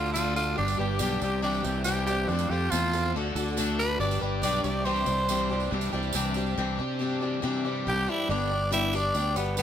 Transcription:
Already playing: fingered electric bass D2, overdriven electric guitar D3, twelve-string acoustic guitar D4 F#4 A4, tenor saxophone F4, tonewheel organ A4 D5 F#5 D6
0.05 tambourine
0.13 twelve-string acoustic guitar D3 A3 D4 F#4 A4, tenor saxophone F4, tambourine
0.36 twelve-string acoustic guitar D4 F#4 A4, tenor saxophone F4, tambourine
0.56 fingered electric bass G1, overdriven electric guitar G2, twelve-string acoustic guitar G3 B3 D4 G4, tenor saxophone D4, tonewheel organ B4 D5 G5, tambourine
0.68 tambourine
0.77 fingered electric bass G1, twelve-string acoustic guitar G3 B3 D4 G4, tenor saxophone G4
0.99 fingered electric bass B1, twelve-string acoustic guitar G2 D3 G3 B3 D4 G4, tenor saxophone G4, tambourine
1.20 fingered electric bass C2, overdriven electric guitar C3, twelve-string acoustic guitar G3 C4 D4 G4, tenor saxophone G4, tonewheel organ C5 E5, tambourine
1.42 twelve-string acoustic guitar C3 E3 G3 C4 D4 G4, tenor saxophone D4
1.54 tambourine
1.63 fingered electric bass C2, overdriven electric guitar E3, twelve-string acoustic guitar G3 C4 D4 G4, tenor saxophone G4, tambourine
1.84 twelve-string acoustic guitar C3 E3 G3 C4 D4 G4, tenor saxophone G4, tambourine
2.06 twelve-string acoustic guitar G3 C4 D4 G4, tenor saxophone G4, tambourine
2.27 fingered electric bass F2, overdriven electric guitar F2, twelve-string acoustic guitar A3 C4, tenor saxophone D4, tonewheel organ A4 F5 C6, tambourine
2.32 twelve-string acoustic guitar F4 A4
2.39 tambourine
2.50 fingered electric bass F2, twelve-string acoustic guitar C4 F4 A4, tenor saxophone G4
2.71 fingered electric bass E2, twelve-string acoustic guitar F3 A3 C4 F4 A4, tenor saxophone F4, tambourine
2.93 twelve-string acoustic guitar C4 F4 A4, tambourine
3.14 fingered electric bass D2, twelve-string acoustic guitar D3 A3 D4 F#4 A4, tonewheel organ D5 F#5 D6
3.35 fingered electric bass D2, overdriven electric guitar D3, twelve-string acoustic guitar D4 F#4 A4, tambourine
3.48 tambourine
3.57 twelve-string acoustic guitar D3 A3 D4 F#4 A4, tambourine
3.79 twelve-string acoustic guitar D4 F#4 A4, tenor saxophone B4, tambourine
4.00 fingered electric bass G1, overdriven electric guitar G2, twelve-string acoustic guitar G3 D4 G4 B4, tonewheel organ B4 G5, tenor saxophone D5, tambourine
4.11 tambourine
4.21 fingered electric bass G1, twelve-string acoustic guitar G3 D4 G4 B4
4.42 fingered electric bass B1, twelve-string acoustic guitar G2 D3 G3 D4 G4 B4, tenor saxophone D5, tambourine
4.64 fingered electric bass C2, overdriven electric guitar C3, twelve-string acoustic guitar G3 C4 D4 G4, tonewheel organ C5 E5, tenor saxophone D5, tambourine
4.85 twelve-string acoustic guitar C3 E3 G3 C4 D4 G4, tenor saxophone C5, tambourine
4.96 tambourine
5.06 fingered electric bass C2, overdriven electric guitar E3, twelve-string acoustic guitar G3 C4 D4 G4, tambourine
5.18 tambourine
5.29 twelve-string acoustic guitar C3 E3 G3 C4 D4 G4, tambourine
5.50 twelve-string acoustic guitar G3 C4 D4 G4
5.60 tambourine
5.71 fingered electric bass C2, twelve-string acoustic guitar G3 C4 D4 G4
5.81 tambourine
5.93 fingered electric bass C2, twelve-string acoustic guitar G3 C4 D4 G4, tambourine
6.03 tambourine
6.13 fingered electric bass C2, twelve-string acoustic guitar C3 E3 G3 C4 D4 G4, tambourine
6.34 twelve-string acoustic guitar C4 D4 G4, tambourine
6.38 twelve-string acoustic guitar G3
6.46 tambourine
6.57 fingered electric bass C2, twelve-string acoustic guitar C3 E3 G3 C4 D4 G4
6.79 fingered electric bass C3, twelve-string acoustic guitar G3 C4 D4 G4
6.99 twelve-string acoustic guitar G3 C4 D4 G4
7.21 overdriven electric guitar E3, twelve-string acoustic guitar G3 C4 D4 G4
7.42 twelve-string acoustic guitar C3 E3 G3 C4 D4 G4, fingered electric bass C3
7.65 twelve-string acoustic guitar G3 C4 D4 G4
7.87 fingered electric bass C2, twelve-string acoustic guitar G3 C4 D4 G4, tenor saxophone G4
8.07 twelve-string acoustic guitar G3 C4 D4 G4, tenor saxophone E4
8.29 fingered electric bass G1, twelve-string acoustic guitar G2 D3 G3 B3 D4 G4, grand piano D4 G4 B4, tenor saxophone D4, tonewheel organ B4 D5 G5 D6
8.50 twelve-string acoustic guitar G3 B3 D4 G4
8.71 twelve-string acoustic guitar G2 D3 G3 B3 D4 G4, grand piano D4 G4 B4, tenor saxophone E4, tambourine
8.93 twelve-string acoustic guitar G3 B3 D4 G4, tenor saxophone D4, tambourine
9.15 fingered electric bass D2, twelve-string acoustic guitar G3 B3 D4 G4, grand piano D4 G4 D5, tambourine
9.36 fingered electric bass G1, twelve-string acoustic guitar G3 B3 D4 G4, tenor saxophone B3, tambourine
9.55 twelve-string acoustic guitar G2 D3 G3 B3 D4 G4, tenor saxophone B3, grand piano D4 G4 B4, tambourine

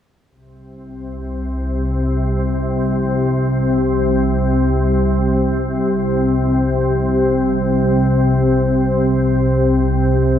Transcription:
0.29 synth drone C2 C3, ambient pad C4
1.66 ambient pad G4
2.89 singing bowl F3
5.66 ambient pad C5
6.56 singing bowl F3
6.74 singing bowl G4
7.54 singing bowl C3

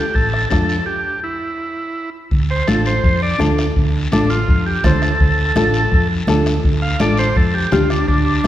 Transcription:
Already playing: transistor combo organ G4
0.14 fingered electric bass A1, transistor combo organ A4, bombo low, high conga, long guiro
0.34 bombo rim
0.50 fingered electric bass F2, nylon-string guitar D4 F4 A4, transistor combo organ A4, bombo low, bombo rim, high conga, short guiro
0.69 short guiro
0.86 transistor combo organ G4
1.24 transistor combo organ E4
2.31 fingered electric bass D2, bombo low, high conga, long guiro
2.51 transistor combo organ C5
2.67 fingered electric bass A1, nylon-string guitar D4 F4 A4, transistor combo organ A4, bombo rim, high conga, short guiro
2.86 transistor combo organ C5, short guiro
3.04 fingered electric bass F2, bombo low, high conga, long guiro
3.23 transistor combo organ D5
3.38 fingered electric bass D2, nylon-string guitar D4 F4 A4, bombo rim, high conga, short guiro
3.58 bombo rim, short guiro
3.76 fingered electric bass D2, bombo low, high conga, long guiro
4.12 fingered electric bass A1, nylon-string guitar D4 F4 A4, transistor combo organ D4, bombo rim, high conga, short guiro
4.30 transistor combo organ F4, short guiro
4.48 fingered electric bass F2, bombo low, high conga, long guiro
4.66 transistor combo organ G4
4.84 fingered electric bass D2, nylon-string guitar D4 F4 C5, transistor combo organ A4, bombo low, bombo rim, high conga, low conga, short guiro
5.02 transistor combo organ A4, bombo rim, short guiro
5.20 fingered electric bass D2, bombo low, high conga, long guiro
5.56 fingered electric bass A1, nylon-string guitar D4 F4 A4, bombo rim, high conga, short guiro
5.74 short guiro
5.92 fingered electric bass F2, bombo low, high conga, long guiro
6.27 fingered electric bass D2, nylon-string guitar D4 F4 A4, bombo rim, high conga, short guiro
6.46 bombo rim, short guiro
6.63 fingered electric bass D2, bombo low, high conga, long guiro
6.82 transistor combo organ F5
6.99 fingered electric bass A1, nylon-string guitar D4 F4 A4, transistor combo organ D5, bombo rim, high conga, short guiro
7.17 transistor combo organ C5, short guiro
7.36 fingered electric bass F2, transistor combo organ A4, bombo low, high conga, long guiro
7.54 transistor combo organ G4
7.72 fingered electric bass D2, nylon-string guitar D4 F4 G4, transistor combo organ F4, bombo rim, high conga, low conga, short guiro
7.90 transistor combo organ D4, bombo rim, short guiro
8.08 fingered electric bass D2, transistor combo organ D4, bombo low, high conga, long guiro
8.44 high conga

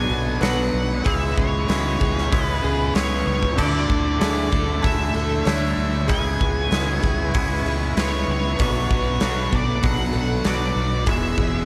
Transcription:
Already playing: clean electric guitar B2 F#3 B3 D4 F#4, distorted electric guitar F#3, lead electric guitar G#5
0.10 fingered electric bass B1, distorted electric guitar B3, twelve-string acoustic guitar A4
0.14 distorted electric guitar F#3
0.41 fingered electric bass B1, distorted electric guitar B2 F#3 B3, clean electric guitar F#3 B3 D4 F#4, twelve-string acoustic guitar B4, lead electric guitar F#5, snare, open hi-hat
0.74 fingered electric bass B1
1.04 fingered electric bass C#2, distorted electric guitar C#3 G#3 C#4, clean electric guitar C#3 E3 G#3 B3 E4, twelve-string acoustic guitar G#4, lead electric guitar E5, kick, open hi-hat
1.36 fingered electric bass C#2, distorted electric guitar G#3 C#4, lead electric guitar C#5, kick
1.67 fingered electric bass C#2, distorted electric guitar C#3 G#3 C#4, clean electric guitar E3 G#3 B3 E4, twelve-string acoustic guitar F#4, snare, open hi-hat
1.98 fingered electric bass C#2, distorted electric guitar G#3 C#4, twelve-string acoustic guitar G#4, kick
2.18 snare
2.31 fingered electric bass C#2, clean electric guitar C#3 E3 G#3 B3 E4, twelve-string acoustic guitar F#4, kick, open hi-hat
2.46 lead electric guitar B4
2.62 fingered electric bass C#2, distorted electric guitar G#3 C#4, twelve-string acoustic guitar G#4
2.93 fingered electric bass C#2, distorted electric guitar C#3 G#3 C#4, clean electric guitar E3 G#3 B3 E4, twelve-string acoustic guitar B4, lead electric guitar C#5, snare, open hi-hat
3.27 fingered electric bass C#2, lead electric guitar C#5
3.43 kick
3.56 fingered electric bass D2, distorted electric guitar D3 A3 D4, clean electric guitar D3 A3 D4 E4, analog synth pad A3 E5, twelve-string acoustic guitar A4, lead electric guitar D5, kick, crash
3.88 fingered electric bass D2, distorted electric guitar A3 D4, kick
4.19 fingered electric bass D2, clean electric guitar D3 A3 D4 E4, distorted electric guitar D3 A3 D4, twelve-string acoustic guitar G#4, snare, open hi-hat
4.50 fingered electric bass D2, distorted electric guitar A3 D4, twelve-string acoustic guitar A4, kick
4.81 fingered electric bass D2, clean electric guitar D3 A3 D4 E4, twelve-string acoustic guitar G#4, lead electric guitar E5, kick, open hi-hat
5.13 fingered electric bass D2, distorted electric guitar A3 D4, twelve-string acoustic guitar A4
5.44 fingered electric bass D2, distorted electric guitar D3 A3 D4, clean electric guitar D3 A3 D4 E4, twelve-string acoustic guitar C#5, snare, open hi-hat
5.77 fingered electric bass D2
6.08 fingered electric bass C#2, clean electric guitar C#3 E3 G#3 B3 E4, distorted electric guitar C#3 G#3, twelve-string acoustic guitar G#4, analog synth pad B4 E5 C#6, lead electric guitar G#5, kick, open hi-hat
6.12 distorted electric guitar C#4
6.39 fingered electric bass C#2, distorted electric guitar G#3 C#4, kick
6.71 fingered electric bass C#2, distorted electric guitar C#3 G#3 C#4, clean electric guitar E3 G#3 B3 E4, twelve-string acoustic guitar F#4, snare, open hi-hat
7.02 fingered electric bass C#2, distorted electric guitar G#3 C#4, twelve-string acoustic guitar G#4, kick
7.34 fingered electric bass C#2, clean electric guitar C#3 E3 G#3 B3 E4, twelve-string acoustic guitar F#4, kick, open hi-hat
7.65 fingered electric bass C#2, distorted electric guitar G#3 C#4, twelve-string acoustic guitar G#4
7.97 fingered electric bass C#2, distorted electric guitar C#3 G#3 C#4, clean electric guitar E3 G#3 B3 E4, twelve-string acoustic guitar B4, lead electric guitar C#5, snare, open hi-hat
8.28 fingered electric bass C#2, lead electric guitar C#5
8.58 fingered electric bass B1, distorted electric guitar B2 F#3, clean electric guitar B2 F#3 B3 D4 F#4, analog synth pad B4 F#5, twelve-string acoustic guitar B4, kick, open hi-hat
8.62 distorted electric guitar B3
8.90 fingered electric bass B1, distorted electric guitar F#3 B3, kick
9.20 fingered electric bass B1, distorted electric guitar B2 F#3 B3, clean electric guitar F#3 B3 D4 F#4, twelve-string acoustic guitar G#4, snare, open hi-hat
9.52 fingered electric bass B1, distorted electric guitar F#3 B3, twelve-string acoustic guitar A4, lead electric guitar D5, kick
9.83 fingered electric bass B1, clean electric guitar B2 F#3 B3 D4 F#4, twelve-string acoustic guitar G#4, lead electric guitar F#5, kick, open hi-hat
10.13 fingered electric bass B1, distorted electric guitar F#3 B3, twelve-string acoustic guitar A4
10.44 fingered electric bass B1, distorted electric guitar B2 F#3 B3, clean electric guitar F#3 B3 D4 F#4, twelve-string acoustic guitar B4, lead electric guitar D5, snare, open hi-hat
10.76 fingered electric bass B1
11.06 fingered electric bass E1, distorted electric guitar E2 B2 E3, clean electric guitar E2 B2 E3 G#3 B3 F#4, twelve-string acoustic guitar G#4, analog synth pad G#4 E6, lead electric guitar E5, kick, open hi-hat
11.37 fingered electric bass E1, distorted electric guitar B2 E3, kick

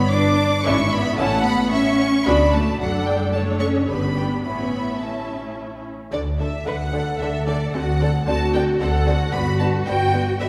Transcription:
Already playing: cello section B3, violin section C#5 B5
0.11 cello section D4, violin section B4 D6
0.39 violin section D5
0.65 double bass section G#1, cello section C#4, viola section D4 E4, violin section E5 C#6
0.92 cello section B3, violin section B5
1.19 double bass section A1, cello section A3, viola section C#4 E4, violin section F#5 A5
1.45 cello section B3, violin section B5
1.72 cello section C#4, violin section E5 C#6
1.99 violin section C#5
2.26 double bass section D2, cello section B3, viola section D4 F#4, violin section D5 B5
2.53 cello section A3, violin section A5
2.80 double bass section F#1, cello section F#3, viola section D4 A4, violin section D5 F#5
3.07 cello section G3, violin section G5
3.33 cello section A3, viola section D4 A4, violin section C#5 A5
3.60 cello section C#4, violin section C#6
3.88 double bass section G1, cello section B3, viola section D4 G4, violin section B4 B5
4.16 violin section G5
4.43 double bass section A1, cello section B3, viola section C#4 E4, violin section E5 B5
4.99 cello section A3, viola section C#4 E4, violin section A5
6.12 double bass section D2, viola section D3 D4, violin section A4 D5
6.39 viola section D3 D4, violin section A4 D5 E5
6.66 double bass section D2, viola section D3 D4, violin section A4 D5 F#5, cello section B4
6.92 viola section D3 D4, cello section A4, violin section A4 D5
7.20 double bass section D2, viola section D3 D4, violin section A4 D5 E5
7.47 viola section D3 D4, violin section A4 D5
7.73 double bass section D2, viola section D3 C4, cello section F#4, violin section A4 D5 F#5
8.00 viola section D3 C4, cello section A4, violin section A4 D5
8.27 double bass section D2, viola section D3 C4, cello section F#4, violin section A4 D5 A5
8.54 viola section D3 C4, violin section A4 D5 G5
8.80 double bass section D2, viola section D3 C4, cello section A4, violin section A4 D5 F#5
9.07 viola section D3 C4, cello section F#4, violin section A4 D5
9.33 double bass section G1, viola section D3 B3, violin section B4 D5 B5
9.59 viola section D3 B3, violin section B4 D5 A5
9.86 double bass section G1, viola section D3 B3, violin section B4 D5 G5
10.13 viola section D3 B3, violin section B4 D5
10.40 double bass section G1, viola section D3 B3, violin section B4 D5 E5

